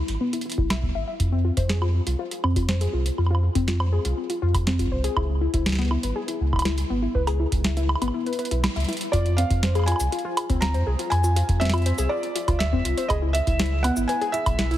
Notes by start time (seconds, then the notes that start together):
0.08 G#1, closed hi-hat
0.21 B3
0.33 E4, closed hi-hat
0.41 closed hi-hat
0.46 E4
0.50 closed hi-hat
0.52 closed hi-hat
0.58 B1 E4, kick
0.70 E5, snare, high woodblock
0.83 C#2, kick
0.95 G#1 E5
1.08 E5
1.20 F2, kick, closed hi-hat
1.32 C4
1.45 F4
1.57 F2 C5, kick, closed hi-hat
1.69 G#4, snare
1.82 F4, high woodblock
2.07 C2 F4, closed hi-hat
2.19 F4
2.31 closed hi-hat
2.44 F2 C4, high woodblock
2.56 F4, kick, closed hi-hat
2.69 C5, snare
2.81 G#4, closed hi-hat
2.93 C2 F4
3.06 closed hi-hat
3.18 F2 F4, high woodblock
3.26 high woodblock
3.31 F4
3.35 high woodblock
3.55 F2 C4, kick, closed hi-hat
3.68 F4, snare
3.80 C5, high woodblock
3.92 G#4
4.05 C2 F4, closed hi-hat
4.30 F4, closed hi-hat
4.42 F2 F4
4.55 kick, closed hi-hat, high woodblock
4.67 C4, snare
4.79 F4, kick, closed hi-hat
4.88 kick
4.92 C2 C5
4.96 kick
5.04 G#4, closed hi-hat
5.17 C#2 E4, kick, high woodblock
5.41 E4
5.54 C#2 E4, kick, closed hi-hat
5.66 snare
5.69 snare
5.72 snare
5.75 B3, snare
5.79 snare
5.82 snare
5.85 snare
5.88 E4, snare, high woodblock
6.03 G#1 B4, closed hi-hat
6.16 G#4
6.28 E4, closed hi-hat
6.41 C#2
6.53 E4, kick, high woodblock
6.56 closed hi-hat, high woodblock
6.59 high woodblock
6.62 E4, snare, high woodblock
6.78 closed hi-hat
6.90 G#1 B3
7.03 E4
7.15 C#2 B4, kick
7.27 G#4, closed hi-hat, high woodblock
7.40 E4
7.52 C#2, kick, closed hi-hat
7.64 E4, snare
7.77 E4, closed hi-hat
7.89 high woodblock
7.95 high woodblock
8.02 G#1 B3, closed hi-hat, high woodblock
8.08 high woodblock
8.14 E4
8.26 B4, closed hi-hat
8.33 closed hi-hat
8.39 B4, closed hi-hat
8.45 closed hi-hat
8.51 B1 E4, closed hi-hat
8.64 E4, snare, high woodblock
8.76 C#2 E5, closed hi-hat
8.80 closed hi-hat
8.84 closed hi-hat
8.88 E4, closed hi-hat
8.93 closed hi-hat
8.97 closed hi-hat
9.01 closed hi-hat
9.12 F2 F4 D5, kick, closed hi-hat
9.26 closed hi-hat
9.37 C4 F5, closed hi-hat
9.50 F2 F4, kick, closed hi-hat
9.63 C5, snare, closed hi-hat
9.75 G#4, closed hi-hat, high woodblock
9.79 high woodblock
9.84 G#5, high woodblock
9.88 F4, closed hi-hat, high woodblock
9.92 high woodblock
9.96 high woodblock
10.00 C2, closed hi-hat, cabasa
10.12 F4, closed hi-hat
10.19 closed hi-hat
10.25 F4
10.37 closed hi-hat, high woodblock
10.50 D2 C4, kick, closed hi-hat
10.61 F4 A#5, snare, closed hi-hat
10.74 F2 C5, closed hi-hat
10.87 C2 G#4
10.99 F4, closed hi-hat
11.10 F2 G#5, closed hi-hat, high woodblock
11.24 F4, closed hi-hat, cabasa
11.36 F4, closed hi-hat
11.49 F2, kick, closed hi-hat
11.60 C4 E5, snare, closed hi-hat
11.65 snare
11.69 snare
11.73 F4, closed hi-hat, high woodblock
11.78 closed hi-hat
11.82 closed hi-hat
11.86 C5, closed hi-hat
11.94 closed hi-hat
11.98 C2 G#4, closed hi-hat, cabasa
12.09 F4 D5
12.23 closed hi-hat
12.35 F4, closed hi-hat
12.48 D2 F4, kick, closed hi-hat, high woodblock
12.59 E5, snare, closed hi-hat
12.73 F2 C4, kick
12.85 C2 F4, closed hi-hat
12.98 C5, closed hi-hat
13.08 C#2 G#4 D#5, kick, closed hi-hat, high woodblock
13.22 E4
13.33 E5, closed hi-hat
13.47 C#2 E4, kick, closed hi-hat
13.60 E4, snare, closed hi-hat
13.66 closed hi-hat
13.83 B3 F#5, closed hi-hat, high woodblock
13.97 G#1 E4, cabasa
14.08 B4 G#5, closed hi-hat
14.21 G#4, closed hi-hat
14.32 E4 E5, closed hi-hat
14.46 B1, kick, closed hi-hat, high woodblock
14.59 E4, snare, closed hi-hat
14.71 C#2 E4, closed hi-hat
14.74 closed hi-hat